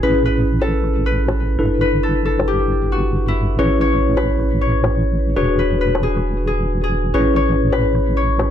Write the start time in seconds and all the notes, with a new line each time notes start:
Already playing: G#4 C#5
0.03 A1 C#4 E4 G#4 B4
0.25 B4, cross-stick
0.61 A4, cross-stick, high bongo
0.84 cross-stick
1.06 B4
1.28 high bongo
1.59 G1 D4 E4 A4 B4
1.81 B4
2.03 A4, cross-stick
2.25 A4
2.39 cross-stick, high bongo
2.48 G4
2.62 cross-stick
2.92 F#4
3.28 E4
3.59 A1 C#4 E4 G#4 B4 C#5
3.81 C#5, cross-stick
4.17 B4, cross-stick, high bongo
4.39 cross-stick
4.61 C#5
4.84 high bongo
5.36 E1 D4 F#4 G#4 B4 C#5
5.59 B4, cross-stick
5.81 B4
5.95 cross-stick, high bongo
6.03 G#4
6.17 cross-stick
6.47 G#4
6.84 G#4
7.14 A1 C#4 E4 G#4 B4 C#5
7.36 C#5, cross-stick
7.72 B4, cross-stick, high bongo
7.95 cross-stick
8.17 C#5
8.39 high bongo